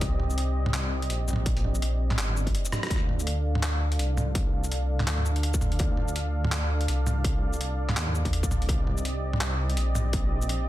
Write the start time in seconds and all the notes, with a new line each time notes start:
Already playing: C4 G4 D5 D#5
0.01 C2, kick, closed hi-hat
0.20 mid tom
0.30 shaker
0.38 closed hi-hat
0.66 mid tom
0.74 clap, closed hi-hat
1.02 closed hi-hat
1.10 A#1, closed hi-hat
1.28 mid tom, shaker
1.30 mid tom
1.33 mid tom
1.36 mid tom
1.46 kick, closed hi-hat
1.57 closed hi-hat
1.64 mid tom
1.75 shaker
1.82 closed hi-hat
2.11 clap, mid tom
2.18 G1, clap, closed hi-hat
2.29 mid tom
2.37 shaker
2.47 kick, closed hi-hat
2.55 closed hi-hat
2.65 shaker
2.72 cross-stick, mid tom, shaker
2.83 cross-stick, closed hi-hat
2.87 D2, kick, cross-stick
2.91 D4 A4 D5 F5, cross-stick, closed hi-hat
2.96 cross-stick
3.09 mid tom
3.19 shaker
3.27 closed hi-hat
3.55 mid tom
3.63 clap, closed hi-hat
3.92 closed hi-hat
3.99 C2, closed hi-hat
4.17 mid tom, shaker
4.35 kick, closed hi-hat
4.64 shaker
4.72 closed hi-hat
5.00 clap, mid tom
5.07 D2, clap, closed hi-hat
5.18 mid tom
5.25 shaker
5.36 closed hi-hat
5.43 closed hi-hat
5.54 kick, shaker
5.61 mid tom, shaker
5.72 closed hi-hat
5.79 D2, kick, closed hi-hat
5.97 mid tom
6.08 shaker
6.16 closed hi-hat
6.45 mid tom
6.52 clap, closed hi-hat
6.81 closed hi-hat
6.88 C2, closed hi-hat
7.07 mid tom, shaker
7.24 kick, closed hi-hat
7.53 shaker
7.61 closed hi-hat
7.89 clap, mid tom
7.97 D#2, clap, closed hi-hat
8.07 mid tom
8.15 shaker
8.25 kick, closed hi-hat
8.33 closed hi-hat
8.43 kick, shaker
8.51 C2, mid tom, shaker
8.62 closed hi-hat
8.69 C2 C4 G4 D#5, kick, closed hi-hat
8.87 mid tom
8.97 shaker
9.05 closed hi-hat
9.33 mid tom
9.41 clap, closed hi-hat
9.70 closed hi-hat
9.77 A#1, closed hi-hat
9.95 mid tom, shaker
10.13 kick, closed hi-hat
10.42 shaker
10.49 closed hi-hat